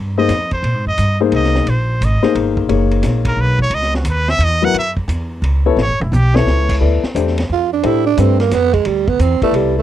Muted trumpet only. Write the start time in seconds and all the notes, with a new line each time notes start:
0.18 D#5
0.53 C5
0.87 D#5
1.36 D#5
1.69 C5
2.04 D#5
3.27 A#4
3.41 B4
3.62 C#5
3.75 D#5
3.96 F#4
4.09 B4
4.30 E5
4.44 D#5
4.64 F#5
4.79 E5
5.82 C#5
6.02 E4
6.14 G4
6.36 C#5